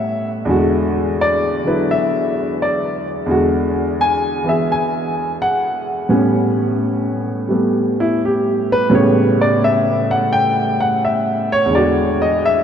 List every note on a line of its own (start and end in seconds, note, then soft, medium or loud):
0.00 0.45 A2 medium
0.00 0.47 G3 medium
0.00 0.49 B3 medium
0.00 0.51 C#4 medium
0.00 0.26 E5 medium
0.45 3.25 E2 medium
0.45 1.63 D3 medium
0.45 3.28 G#3 medium
0.50 3.29 F#4 medium
1.21 1.66 D5 medium
1.64 3.26 D3 soft
1.64 3.28 F#3 soft
1.64 3.29 E4 soft
1.64 1.88 B4 medium
1.91 2.56 E5 medium
2.62 3.07 D5 medium
3.26 6.08 E2 medium
3.26 6.09 D3 medium
3.26 6.10 G#3 medium
3.31 6.10 F#4 medium
4.01 4.46 G#5 medium
4.44 6.09 E3 soft
4.44 6.08 B3 soft
4.44 6.10 G#4 soft
4.49 4.69 E5 medium
4.72 5.36 G#5 medium
5.42 5.70 F#5 medium
6.09 8.88 A2 soft
6.09 7.47 G3 soft
6.09 7.50 B3 medium
6.09 8.90 C#4 medium
7.49 8.89 G3 soft
7.49 8.90 A3 soft
7.49 8.90 B3 soft
8.00 8.20 E4 medium
8.25 8.69 G4 medium
8.72 8.92 B4 medium
8.90 11.70 A2 medium
8.90 11.71 C#3 medium
8.90 11.71 G3 medium
8.90 11.71 B3 medium
8.95 9.39 C#5 medium
9.41 9.61 D5 medium
9.64 10.09 E5 medium
10.11 10.31 F#5 medium
10.33 10.78 G5 medium
10.80 11.01 F#5 medium
11.05 11.49 E5 medium
11.52 11.72 C#5 medium
11.66 12.63 E2 medium
11.66 12.63 D3 soft
11.73 12.63 G#3 medium
11.73 12.63 F#4 medium
11.73 12.19 D5 medium
12.22 12.42 D#5 medium
12.46 12.63 E5 medium